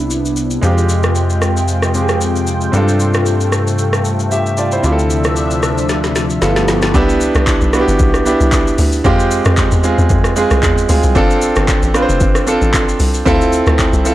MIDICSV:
0, 0, Header, 1, 6, 480
1, 0, Start_track
1, 0, Key_signature, 0, "major"
1, 0, Tempo, 526316
1, 575, Time_signature, 4, 2, 24, 8
1, 12899, End_track
2, 0, Start_track
2, 0, Title_t, "Grand piano"
2, 0, Program_c, 0, 0
2, 0, Control_c, 0, 64, 127
2, 0, Note_on_c, 0, 59, 77
2, 0, Note_on_c, 0, 62, 69
2, 0, Note_on_c, 0, 64, 68
2, 0, Note_on_c, 0, 67, 85
2, 531, Note_off_c, 0, 59, 0
2, 536, Note_off_c, 0, 62, 0
2, 542, Note_off_c, 0, 64, 0
2, 560, Note_on_c, 0, 56, 76
2, 571, Note_on_c, 0, 60, 67
2, 576, Note_off_c, 0, 67, 0
2, 583, Note_on_c, 0, 65, 68
2, 585, Control_c, 0, 64, 0
2, 594, Note_on_c, 0, 67, 87
2, 750, Control_c, 0, 64, 127
2, 1743, Note_off_c, 0, 56, 0
2, 1748, Note_off_c, 0, 60, 0
2, 1755, Note_off_c, 0, 65, 0
2, 1760, Note_off_c, 0, 67, 0
2, 1769, Note_on_c, 0, 56, 56
2, 1774, Note_on_c, 0, 60, 52
2, 1780, Note_on_c, 0, 65, 52
2, 1784, Note_on_c, 0, 67, 49
2, 1843, Note_off_c, 0, 67, 0
2, 1843, Note_on_c, 0, 68, 61
2, 2466, Note_off_c, 0, 60, 0
2, 2479, Note_on_c, 0, 60, 77
2, 2488, Note_off_c, 0, 65, 0
2, 2491, Note_on_c, 0, 62, 69
2, 2492, Note_off_c, 0, 56, 0
2, 2502, Note_on_c, 0, 65, 72
2, 2507, Control_c, 0, 64, 0
2, 2513, Note_on_c, 0, 69, 84
2, 2529, Note_off_c, 0, 68, 0
2, 2683, Control_c, 0, 64, 127
2, 3909, Note_off_c, 0, 65, 0
2, 3915, Note_off_c, 0, 69, 0
2, 3936, Note_on_c, 0, 76, 67
2, 3943, Note_on_c, 0, 67, 53
2, 4163, Note_off_c, 0, 76, 0
2, 4167, Note_off_c, 0, 67, 0
2, 4175, Note_on_c, 0, 74, 70
2, 4181, Note_on_c, 0, 65, 60
2, 4300, Note_off_c, 0, 74, 0
2, 4303, Note_off_c, 0, 65, 0
2, 4310, Note_on_c, 0, 72, 64
2, 4315, Note_on_c, 0, 64, 56
2, 4370, Note_off_c, 0, 60, 0
2, 4376, Note_off_c, 0, 62, 0
2, 4396, Note_off_c, 0, 64, 0
2, 4399, Note_on_c, 0, 60, 76
2, 4410, Note_on_c, 0, 64, 73
2, 4421, Note_on_c, 0, 65, 73
2, 4425, Control_c, 0, 64, 0
2, 4432, Note_on_c, 0, 67, 69
2, 4487, Note_off_c, 0, 67, 0
2, 4490, Note_on_c, 0, 69, 84
2, 4536, Note_off_c, 0, 72, 0
2, 4609, Control_c, 0, 64, 127
2, 5818, Note_off_c, 0, 60, 0
2, 5823, Note_off_c, 0, 64, 0
2, 5829, Note_off_c, 0, 65, 0
2, 5848, Note_on_c, 0, 59, 71
2, 5850, Note_off_c, 0, 69, 0
2, 5853, Note_on_c, 0, 64, 66
2, 5859, Note_on_c, 0, 65, 67
2, 5864, Note_on_c, 0, 69, 79
2, 5865, Control_c, 0, 64, 0
2, 6005, Control_c, 0, 64, 127
2, 6316, Note_off_c, 0, 59, 0
2, 6326, Note_off_c, 0, 64, 0
2, 6330, Note_on_c, 0, 59, 118
2, 6335, Note_on_c, 0, 62, 111
2, 6337, Note_off_c, 0, 65, 0
2, 6339, Note_off_c, 0, 69, 0
2, 6340, Note_on_c, 0, 64, 108
2, 6344, Control_c, 0, 64, 0
2, 6345, Note_on_c, 0, 67, 127
2, 6487, Control_c, 0, 64, 127
2, 6918, Note_off_c, 0, 59, 0
2, 6920, Note_off_c, 0, 62, 0
2, 6923, Note_off_c, 0, 64, 0
2, 6925, Note_off_c, 0, 67, 0
2, 7049, Note_on_c, 0, 59, 90
2, 7055, Note_on_c, 0, 62, 83
2, 7060, Note_on_c, 0, 64, 81
2, 7066, Note_on_c, 0, 66, 80
2, 7122, Note_on_c, 0, 67, 100
2, 7123, Note_off_c, 0, 66, 0
2, 7446, Note_off_c, 0, 59, 0
2, 7448, Note_off_c, 0, 62, 0
2, 7451, Note_off_c, 0, 64, 0
2, 7482, Note_off_c, 0, 67, 0
2, 7528, Note_on_c, 0, 59, 93
2, 7533, Note_on_c, 0, 62, 81
2, 7538, Note_on_c, 0, 64, 84
2, 7543, Note_on_c, 0, 67, 98
2, 8117, Note_off_c, 0, 59, 0
2, 8119, Note_off_c, 0, 62, 0
2, 8122, Note_off_c, 0, 64, 0
2, 8125, Note_off_c, 0, 67, 0
2, 8247, Note_on_c, 0, 56, 114
2, 8252, Note_on_c, 0, 60, 112
2, 8259, Note_on_c, 0, 65, 112
2, 8263, Note_on_c, 0, 67, 127
2, 8265, Control_c, 0, 64, 0
2, 8408, Control_c, 0, 64, 127
2, 8836, Note_off_c, 0, 56, 0
2, 8839, Note_off_c, 0, 60, 0
2, 8842, Note_off_c, 0, 65, 0
2, 8844, Note_off_c, 0, 67, 0
2, 8970, Note_on_c, 0, 56, 92
2, 8974, Note_on_c, 0, 60, 81
2, 8979, Note_on_c, 0, 65, 84
2, 8985, Note_on_c, 0, 68, 97
2, 9366, Note_off_c, 0, 56, 0
2, 9368, Note_off_c, 0, 60, 0
2, 9370, Note_off_c, 0, 65, 0
2, 9373, Note_off_c, 0, 68, 0
2, 9448, Note_on_c, 0, 56, 91
2, 9454, Note_on_c, 0, 60, 87
2, 9461, Note_on_c, 0, 65, 81
2, 9465, Note_on_c, 0, 68, 98
2, 9845, Note_off_c, 0, 56, 0
2, 9848, Note_off_c, 0, 60, 0
2, 9851, Note_off_c, 0, 65, 0
2, 9854, Note_off_c, 0, 68, 0
2, 9928, Note_on_c, 0, 56, 77
2, 9933, Note_on_c, 0, 60, 74
2, 9939, Note_on_c, 0, 65, 76
2, 9944, Note_on_c, 0, 68, 92
2, 10128, Note_off_c, 0, 56, 0
2, 10130, Note_off_c, 0, 60, 0
2, 10134, Note_off_c, 0, 65, 0
2, 10136, Note_off_c, 0, 68, 0
2, 10169, Note_on_c, 0, 60, 121
2, 10174, Note_on_c, 0, 62, 105
2, 10179, Note_on_c, 0, 65, 107
2, 10185, Note_on_c, 0, 69, 127
2, 10186, Control_c, 0, 64, 0
2, 10361, Control_c, 0, 64, 127
2, 10757, Note_off_c, 0, 60, 0
2, 10760, Note_off_c, 0, 62, 0
2, 10762, Note_off_c, 0, 65, 0
2, 10766, Note_off_c, 0, 69, 0
2, 10889, Note_on_c, 0, 60, 89
2, 10894, Note_on_c, 0, 62, 82
2, 10899, Note_on_c, 0, 65, 81
2, 10906, Note_on_c, 0, 71, 83
2, 10963, Note_off_c, 0, 71, 0
2, 10964, Note_on_c, 0, 72, 99
2, 11285, Note_off_c, 0, 60, 0
2, 11288, Note_off_c, 0, 62, 0
2, 11291, Note_off_c, 0, 65, 0
2, 11323, Note_off_c, 0, 72, 0
2, 11369, Note_on_c, 0, 60, 93
2, 11373, Note_on_c, 0, 62, 82
2, 11379, Note_on_c, 0, 65, 86
2, 11384, Note_on_c, 0, 69, 101
2, 11958, Note_off_c, 0, 60, 0
2, 11960, Note_off_c, 0, 62, 0
2, 11962, Note_off_c, 0, 65, 0
2, 11965, Note_off_c, 0, 69, 0
2, 12088, Note_on_c, 0, 60, 122
2, 12094, Note_on_c, 0, 64, 112
2, 12099, Note_on_c, 0, 65, 109
2, 12104, Control_c, 0, 64, 0
2, 12104, Note_on_c, 0, 69, 127
2, 12284, Control_c, 0, 64, 127
2, 12677, Note_off_c, 0, 60, 0
2, 12680, Note_off_c, 0, 64, 0
2, 12682, Note_off_c, 0, 65, 0
2, 12685, Note_off_c, 0, 69, 0
2, 12809, Note_on_c, 0, 60, 85
2, 12816, Note_on_c, 0, 64, 81
2, 12820, Note_on_c, 0, 65, 82
2, 12825, Note_on_c, 0, 69, 95
2, 12899, Note_off_c, 0, 60, 0
2, 12899, Note_off_c, 0, 64, 0
2, 12899, Note_off_c, 0, 65, 0
2, 12899, Note_off_c, 0, 69, 0
2, 12899, End_track
3, 0, Start_track
3, 0, Title_t, "Analog synth pad"
3, 0, Program_c, 1, 89
3, 0, Note_on_c, 1, 48, 75
3, 0, Note_on_c, 1, 59, 70
3, 0, Note_on_c, 1, 62, 68
3, 0, Note_on_c, 1, 64, 83
3, 551, Note_off_c, 1, 59, 0
3, 555, Note_off_c, 1, 62, 0
3, 556, Note_off_c, 1, 64, 0
3, 576, Note_on_c, 1, 56, 69
3, 577, Note_on_c, 1, 65, 70
3, 577, Note_on_c, 1, 79, 84
3, 2476, Note_off_c, 1, 56, 0
3, 2491, Note_on_c, 1, 57, 71
3, 4379, Note_off_c, 1, 65, 0
3, 4379, Note_off_c, 1, 79, 0
3, 4393, Note_off_c, 1, 57, 0
3, 4412, Note_on_c, 1, 76, 81
3, 4413, Note_on_c, 1, 53, 69
3, 4413, Note_on_c, 1, 62, 71
3, 5818, Note_off_c, 1, 48, 0
3, 5839, Note_off_c, 1, 53, 0
3, 5839, Note_off_c, 1, 62, 0
3, 5839, Note_off_c, 1, 76, 0
3, 5852, Note_on_c, 1, 59, 66
3, 5853, Note_on_c, 1, 53, 73
3, 5853, Note_on_c, 1, 57, 65
3, 5853, Note_on_c, 1, 67, 80
3, 6329, Note_off_c, 1, 53, 0
3, 6329, Note_off_c, 1, 57, 0
3, 6329, Note_off_c, 1, 59, 0
3, 6329, Note_off_c, 1, 67, 0
3, 12899, End_track
4, 0, Start_track
4, 0, Title_t, "Analog synth bass"
4, 0, Program_c, 2, 38
4, 0, Note_on_c, 2, 36, 84
4, 537, Note_off_c, 2, 36, 0
4, 574, Note_on_c, 2, 41, 83
4, 2458, Note_off_c, 2, 41, 0
4, 2492, Note_on_c, 2, 43, 83
4, 4377, Note_off_c, 2, 43, 0
4, 4413, Note_on_c, 2, 38, 84
4, 5825, Note_off_c, 2, 38, 0
4, 5853, Note_on_c, 2, 31, 81
4, 6324, Note_off_c, 2, 31, 0
4, 12899, End_track
5, 0, Start_track
5, 0, Title_t, "Log drum bass"
5, 0, Program_c, 3, 39
5, 6334, Note_on_c, 3, 36, 108
5, 6661, Note_off_c, 3, 36, 0
5, 6705, Note_on_c, 3, 36, 93
5, 6916, Note_off_c, 3, 36, 0
5, 6946, Note_on_c, 3, 35, 89
5, 7157, Note_off_c, 3, 35, 0
5, 7187, Note_on_c, 3, 31, 88
5, 7282, Note_off_c, 3, 31, 0
5, 7293, Note_on_c, 3, 35, 101
5, 7621, Note_off_c, 3, 35, 0
5, 7666, Note_on_c, 3, 36, 93
5, 7972, Note_off_c, 3, 36, 0
5, 8013, Note_on_c, 3, 38, 90
5, 8224, Note_off_c, 3, 38, 0
5, 8252, Note_on_c, 3, 41, 102
5, 8580, Note_off_c, 3, 41, 0
5, 8626, Note_on_c, 3, 41, 102
5, 8837, Note_off_c, 3, 41, 0
5, 8866, Note_on_c, 3, 40, 97
5, 9077, Note_off_c, 3, 40, 0
5, 9106, Note_on_c, 3, 40, 95
5, 9201, Note_off_c, 3, 40, 0
5, 9213, Note_on_c, 3, 41, 101
5, 9541, Note_off_c, 3, 41, 0
5, 9586, Note_on_c, 3, 36, 100
5, 9681, Note_off_c, 3, 36, 0
5, 9695, Note_on_c, 3, 40, 100
5, 9906, Note_off_c, 3, 40, 0
5, 9936, Note_on_c, 3, 38, 101
5, 10051, Note_off_c, 3, 38, 0
5, 10067, Note_on_c, 3, 36, 98
5, 10162, Note_off_c, 3, 36, 0
5, 10174, Note_on_c, 3, 31, 117
5, 10501, Note_off_c, 3, 31, 0
5, 10547, Note_on_c, 3, 31, 98
5, 10758, Note_off_c, 3, 31, 0
5, 10787, Note_on_c, 3, 33, 92
5, 10998, Note_off_c, 3, 33, 0
5, 11027, Note_on_c, 3, 29, 94
5, 11122, Note_off_c, 3, 29, 0
5, 11134, Note_on_c, 3, 31, 109
5, 11461, Note_off_c, 3, 31, 0
5, 11506, Note_on_c, 3, 33, 93
5, 11812, Note_off_c, 3, 33, 0
5, 11855, Note_on_c, 3, 36, 88
5, 12066, Note_off_c, 3, 36, 0
5, 12095, Note_on_c, 3, 38, 105
5, 12422, Note_off_c, 3, 38, 0
5, 12465, Note_on_c, 3, 38, 98
5, 12676, Note_off_c, 3, 38, 0
5, 12704, Note_on_c, 3, 36, 95
5, 12899, Note_off_c, 3, 36, 0
5, 12899, End_track
6, 0, Start_track
6, 0, Title_t, "Drums"
6, 97, Note_on_c, 9, 82, 80
6, 188, Note_off_c, 9, 82, 0
6, 231, Note_on_c, 9, 82, 53
6, 323, Note_off_c, 9, 82, 0
6, 332, Note_on_c, 9, 82, 83
6, 423, Note_off_c, 9, 82, 0
6, 460, Note_on_c, 9, 82, 52
6, 552, Note_off_c, 9, 82, 0
6, 574, Note_on_c, 9, 82, 71
6, 665, Note_off_c, 9, 82, 0
6, 710, Note_on_c, 9, 82, 52
6, 801, Note_off_c, 9, 82, 0
6, 813, Note_on_c, 9, 82, 82
6, 904, Note_off_c, 9, 82, 0
6, 940, Note_on_c, 9, 82, 43
6, 947, Note_on_c, 9, 37, 95
6, 1032, Note_off_c, 9, 82, 0
6, 1039, Note_off_c, 9, 37, 0
6, 1051, Note_on_c, 9, 82, 64
6, 1142, Note_off_c, 9, 82, 0
6, 1184, Note_on_c, 9, 82, 57
6, 1275, Note_off_c, 9, 82, 0
6, 1292, Note_on_c, 9, 37, 84
6, 1293, Note_on_c, 9, 82, 76
6, 1383, Note_off_c, 9, 37, 0
6, 1385, Note_off_c, 9, 82, 0
6, 1430, Note_on_c, 9, 82, 54
6, 1521, Note_off_c, 9, 82, 0
6, 1532, Note_on_c, 9, 82, 73
6, 1624, Note_off_c, 9, 82, 0
6, 1664, Note_on_c, 9, 37, 90
6, 1668, Note_on_c, 9, 82, 56
6, 1755, Note_off_c, 9, 37, 0
6, 1759, Note_off_c, 9, 82, 0
6, 1772, Note_on_c, 9, 82, 93
6, 1863, Note_off_c, 9, 82, 0
6, 1904, Note_on_c, 9, 82, 46
6, 1907, Note_on_c, 9, 37, 91
6, 1996, Note_off_c, 9, 82, 0
6, 1998, Note_off_c, 9, 37, 0
6, 2016, Note_on_c, 9, 82, 83
6, 2107, Note_off_c, 9, 82, 0
6, 2150, Note_on_c, 9, 82, 51
6, 2241, Note_off_c, 9, 82, 0
6, 2252, Note_on_c, 9, 82, 84
6, 2343, Note_off_c, 9, 82, 0
6, 2380, Note_on_c, 9, 82, 52
6, 2471, Note_off_c, 9, 82, 0
6, 2493, Note_on_c, 9, 82, 68
6, 2585, Note_off_c, 9, 82, 0
6, 2630, Note_on_c, 9, 82, 50
6, 2721, Note_off_c, 9, 82, 0
6, 2733, Note_on_c, 9, 82, 87
6, 2824, Note_off_c, 9, 82, 0
6, 2862, Note_on_c, 9, 82, 45
6, 2869, Note_on_c, 9, 37, 95
6, 2953, Note_off_c, 9, 82, 0
6, 2960, Note_off_c, 9, 37, 0
6, 2972, Note_on_c, 9, 82, 67
6, 3063, Note_off_c, 9, 82, 0
6, 3105, Note_on_c, 9, 82, 54
6, 3197, Note_off_c, 9, 82, 0
6, 3213, Note_on_c, 9, 37, 85
6, 3214, Note_on_c, 9, 82, 75
6, 3304, Note_off_c, 9, 37, 0
6, 3306, Note_off_c, 9, 82, 0
6, 3350, Note_on_c, 9, 82, 54
6, 3441, Note_off_c, 9, 82, 0
6, 3451, Note_on_c, 9, 82, 72
6, 3542, Note_off_c, 9, 82, 0
6, 3584, Note_on_c, 9, 37, 85
6, 3588, Note_on_c, 9, 82, 57
6, 3675, Note_off_c, 9, 37, 0
6, 3679, Note_off_c, 9, 82, 0
6, 3692, Note_on_c, 9, 82, 90
6, 3783, Note_off_c, 9, 82, 0
6, 3825, Note_on_c, 9, 82, 48
6, 3916, Note_off_c, 9, 82, 0
6, 3935, Note_on_c, 9, 82, 86
6, 4026, Note_off_c, 9, 82, 0
6, 4070, Note_on_c, 9, 82, 52
6, 4162, Note_off_c, 9, 82, 0
6, 4170, Note_on_c, 9, 82, 79
6, 4262, Note_off_c, 9, 82, 0
6, 4301, Note_on_c, 9, 82, 54
6, 4392, Note_off_c, 9, 82, 0
6, 4413, Note_on_c, 9, 82, 70
6, 4504, Note_off_c, 9, 82, 0
6, 4551, Note_on_c, 9, 82, 52
6, 4642, Note_off_c, 9, 82, 0
6, 4653, Note_on_c, 9, 82, 85
6, 4744, Note_off_c, 9, 82, 0
6, 4780, Note_on_c, 9, 82, 43
6, 4787, Note_on_c, 9, 37, 93
6, 4871, Note_off_c, 9, 82, 0
6, 4878, Note_off_c, 9, 37, 0
6, 4890, Note_on_c, 9, 82, 70
6, 4982, Note_off_c, 9, 82, 0
6, 5024, Note_on_c, 9, 82, 54
6, 5115, Note_off_c, 9, 82, 0
6, 5133, Note_on_c, 9, 37, 90
6, 5135, Note_on_c, 9, 82, 76
6, 5225, Note_off_c, 9, 37, 0
6, 5226, Note_off_c, 9, 82, 0
6, 5271, Note_on_c, 9, 82, 53
6, 5362, Note_off_c, 9, 82, 0
6, 5372, Note_on_c, 9, 82, 78
6, 5375, Note_on_c, 9, 38, 51
6, 5463, Note_off_c, 9, 82, 0
6, 5466, Note_off_c, 9, 38, 0
6, 5508, Note_on_c, 9, 38, 49
6, 5509, Note_on_c, 9, 82, 54
6, 5599, Note_off_c, 9, 38, 0
6, 5600, Note_off_c, 9, 82, 0
6, 5615, Note_on_c, 9, 38, 66
6, 5615, Note_on_c, 9, 82, 91
6, 5706, Note_off_c, 9, 82, 0
6, 5707, Note_off_c, 9, 38, 0
6, 5746, Note_on_c, 9, 82, 49
6, 5837, Note_off_c, 9, 82, 0
6, 5854, Note_on_c, 9, 38, 75
6, 5856, Note_on_c, 9, 82, 84
6, 5945, Note_off_c, 9, 38, 0
6, 5947, Note_off_c, 9, 82, 0
6, 5985, Note_on_c, 9, 38, 72
6, 5990, Note_on_c, 9, 82, 52
6, 6077, Note_off_c, 9, 38, 0
6, 6081, Note_off_c, 9, 82, 0
6, 6093, Note_on_c, 9, 82, 83
6, 6095, Note_on_c, 9, 38, 89
6, 6184, Note_off_c, 9, 82, 0
6, 6186, Note_off_c, 9, 38, 0
6, 6220, Note_on_c, 9, 82, 52
6, 6225, Note_on_c, 9, 38, 79
6, 6311, Note_off_c, 9, 82, 0
6, 6316, Note_off_c, 9, 38, 0
6, 6333, Note_on_c, 9, 82, 73
6, 6334, Note_on_c, 9, 36, 117
6, 6424, Note_off_c, 9, 82, 0
6, 6425, Note_off_c, 9, 36, 0
6, 6470, Note_on_c, 9, 82, 58
6, 6561, Note_off_c, 9, 82, 0
6, 6572, Note_on_c, 9, 82, 93
6, 6663, Note_off_c, 9, 82, 0
6, 6701, Note_on_c, 9, 82, 47
6, 6708, Note_on_c, 9, 37, 104
6, 6792, Note_off_c, 9, 82, 0
6, 6800, Note_off_c, 9, 37, 0
6, 6810, Note_on_c, 9, 82, 73
6, 6813, Note_on_c, 9, 36, 98
6, 6815, Note_on_c, 9, 39, 92
6, 6901, Note_off_c, 9, 82, 0
6, 6905, Note_off_c, 9, 36, 0
6, 6907, Note_off_c, 9, 39, 0
6, 6942, Note_on_c, 9, 82, 61
6, 7033, Note_off_c, 9, 82, 0
6, 7052, Note_on_c, 9, 37, 95
6, 7053, Note_on_c, 9, 82, 81
6, 7143, Note_off_c, 9, 37, 0
6, 7144, Note_off_c, 9, 82, 0
6, 7190, Note_on_c, 9, 82, 55
6, 7281, Note_off_c, 9, 82, 0
6, 7289, Note_on_c, 9, 82, 81
6, 7293, Note_on_c, 9, 36, 124
6, 7380, Note_off_c, 9, 82, 0
6, 7384, Note_off_c, 9, 36, 0
6, 7422, Note_on_c, 9, 37, 91
6, 7426, Note_on_c, 9, 82, 59
6, 7514, Note_off_c, 9, 37, 0
6, 7518, Note_off_c, 9, 82, 0
6, 7532, Note_on_c, 9, 82, 97
6, 7623, Note_off_c, 9, 82, 0
6, 7665, Note_on_c, 9, 82, 52
6, 7756, Note_off_c, 9, 82, 0
6, 7774, Note_on_c, 9, 39, 97
6, 7774, Note_on_c, 9, 82, 91
6, 7775, Note_on_c, 9, 36, 97
6, 7865, Note_off_c, 9, 39, 0
6, 7866, Note_off_c, 9, 36, 0
6, 7866, Note_off_c, 9, 82, 0
6, 7910, Note_on_c, 9, 82, 56
6, 8001, Note_off_c, 9, 82, 0
6, 8010, Note_on_c, 9, 46, 71
6, 8010, Note_on_c, 9, 82, 88
6, 8101, Note_off_c, 9, 46, 0
6, 8101, Note_off_c, 9, 82, 0
6, 8137, Note_on_c, 9, 82, 54
6, 8228, Note_off_c, 9, 82, 0
6, 8251, Note_on_c, 9, 82, 76
6, 8252, Note_on_c, 9, 36, 122
6, 8342, Note_off_c, 9, 82, 0
6, 8344, Note_off_c, 9, 36, 0
6, 8387, Note_on_c, 9, 82, 58
6, 8478, Note_off_c, 9, 82, 0
6, 8490, Note_on_c, 9, 82, 96
6, 8582, Note_off_c, 9, 82, 0
6, 8619, Note_on_c, 9, 82, 45
6, 8626, Note_on_c, 9, 37, 101
6, 8710, Note_off_c, 9, 82, 0
6, 8717, Note_off_c, 9, 37, 0
6, 8727, Note_on_c, 9, 82, 70
6, 8733, Note_on_c, 9, 36, 98
6, 8733, Note_on_c, 9, 39, 92
6, 8818, Note_off_c, 9, 82, 0
6, 8824, Note_off_c, 9, 36, 0
6, 8824, Note_off_c, 9, 39, 0
6, 8860, Note_on_c, 9, 82, 61
6, 8951, Note_off_c, 9, 82, 0
6, 8971, Note_on_c, 9, 82, 81
6, 9062, Note_off_c, 9, 82, 0
6, 9108, Note_on_c, 9, 82, 57
6, 9199, Note_off_c, 9, 82, 0
6, 9207, Note_on_c, 9, 82, 80
6, 9213, Note_on_c, 9, 36, 127
6, 9298, Note_off_c, 9, 82, 0
6, 9304, Note_off_c, 9, 36, 0
6, 9341, Note_on_c, 9, 37, 93
6, 9345, Note_on_c, 9, 82, 60
6, 9432, Note_off_c, 9, 37, 0
6, 9436, Note_off_c, 9, 82, 0
6, 9450, Note_on_c, 9, 82, 95
6, 9541, Note_off_c, 9, 82, 0
6, 9584, Note_on_c, 9, 82, 52
6, 9586, Note_on_c, 9, 37, 94
6, 9675, Note_off_c, 9, 82, 0
6, 9677, Note_off_c, 9, 37, 0
6, 9695, Note_on_c, 9, 36, 98
6, 9695, Note_on_c, 9, 39, 93
6, 9696, Note_on_c, 9, 82, 95
6, 9786, Note_off_c, 9, 39, 0
6, 9787, Note_off_c, 9, 36, 0
6, 9787, Note_off_c, 9, 82, 0
6, 9830, Note_on_c, 9, 82, 58
6, 9921, Note_off_c, 9, 82, 0
6, 9932, Note_on_c, 9, 46, 74
6, 9932, Note_on_c, 9, 82, 89
6, 10023, Note_off_c, 9, 46, 0
6, 10023, Note_off_c, 9, 82, 0
6, 10061, Note_on_c, 9, 82, 58
6, 10152, Note_off_c, 9, 82, 0
6, 10173, Note_on_c, 9, 82, 75
6, 10174, Note_on_c, 9, 36, 121
6, 10264, Note_off_c, 9, 82, 0
6, 10265, Note_off_c, 9, 36, 0
6, 10310, Note_on_c, 9, 82, 59
6, 10401, Note_off_c, 9, 82, 0
6, 10412, Note_on_c, 9, 82, 89
6, 10503, Note_off_c, 9, 82, 0
6, 10541, Note_on_c, 9, 82, 48
6, 10548, Note_on_c, 9, 37, 97
6, 10632, Note_off_c, 9, 82, 0
6, 10640, Note_off_c, 9, 37, 0
6, 10652, Note_on_c, 9, 82, 72
6, 10655, Note_on_c, 9, 36, 98
6, 10657, Note_on_c, 9, 39, 96
6, 10743, Note_off_c, 9, 82, 0
6, 10746, Note_off_c, 9, 36, 0
6, 10748, Note_off_c, 9, 39, 0
6, 10785, Note_on_c, 9, 82, 62
6, 10876, Note_off_c, 9, 82, 0
6, 10893, Note_on_c, 9, 37, 95
6, 10895, Note_on_c, 9, 82, 82
6, 10984, Note_off_c, 9, 37, 0
6, 10986, Note_off_c, 9, 82, 0
6, 11030, Note_on_c, 9, 82, 61
6, 11121, Note_off_c, 9, 82, 0
6, 11131, Note_on_c, 9, 82, 82
6, 11135, Note_on_c, 9, 36, 127
6, 11222, Note_off_c, 9, 82, 0
6, 11226, Note_off_c, 9, 36, 0
6, 11263, Note_on_c, 9, 37, 94
6, 11267, Note_on_c, 9, 82, 60
6, 11355, Note_off_c, 9, 37, 0
6, 11359, Note_off_c, 9, 82, 0
6, 11374, Note_on_c, 9, 82, 97
6, 11465, Note_off_c, 9, 82, 0
6, 11506, Note_on_c, 9, 82, 50
6, 11597, Note_off_c, 9, 82, 0
6, 11617, Note_on_c, 9, 36, 93
6, 11617, Note_on_c, 9, 39, 98
6, 11618, Note_on_c, 9, 82, 93
6, 11708, Note_off_c, 9, 36, 0
6, 11709, Note_off_c, 9, 39, 0
6, 11709, Note_off_c, 9, 82, 0
6, 11752, Note_on_c, 9, 82, 53
6, 11844, Note_off_c, 9, 82, 0
6, 11853, Note_on_c, 9, 46, 72
6, 11853, Note_on_c, 9, 82, 92
6, 11944, Note_off_c, 9, 46, 0
6, 11944, Note_off_c, 9, 82, 0
6, 11983, Note_on_c, 9, 82, 58
6, 12074, Note_off_c, 9, 82, 0
6, 12095, Note_on_c, 9, 36, 124
6, 12096, Note_on_c, 9, 82, 75
6, 12186, Note_off_c, 9, 36, 0
6, 12188, Note_off_c, 9, 82, 0
6, 12233, Note_on_c, 9, 82, 57
6, 12324, Note_off_c, 9, 82, 0
6, 12335, Note_on_c, 9, 82, 96
6, 12427, Note_off_c, 9, 82, 0
6, 12463, Note_on_c, 9, 82, 47
6, 12471, Note_on_c, 9, 37, 104
6, 12555, Note_off_c, 9, 82, 0
6, 12562, Note_off_c, 9, 37, 0
6, 12573, Note_on_c, 9, 82, 72
6, 12575, Note_on_c, 9, 36, 103
6, 12578, Note_on_c, 9, 39, 95
6, 12664, Note_off_c, 9, 82, 0
6, 12666, Note_off_c, 9, 36, 0
6, 12669, Note_off_c, 9, 39, 0
6, 12706, Note_on_c, 9, 82, 61
6, 12797, Note_off_c, 9, 82, 0
6, 12817, Note_on_c, 9, 82, 85
6, 12899, Note_off_c, 9, 82, 0
6, 12899, End_track
0, 0, End_of_file